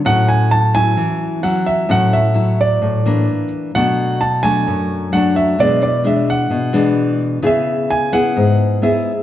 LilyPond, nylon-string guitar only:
\new Staff \with { instrumentName = "Nylon-string guitar" } { \time 4/4 \key a \major \tempo 4 = 130 << { <fis cis' e'>4 r8 <fis cis' e'>4. <fis cis' e'>4 | <fis cis' e'>8 r8 <fis e'>4. <e bes d'>4. | <fis a d'>4 r8 <fis a d'>4. <fis a d'>4 | <e gis d'>8 r8 <e gis d'>4. <e gis d'>4. |
<b e' gis'>4. <b e' gis'>4. <b e' gis'>8 r8 | } \\ { a,2 e2 | a,2 a,4 r4 | b,2 fis,2 | b,2 b,2 |
cis2 gis,2 | } >> }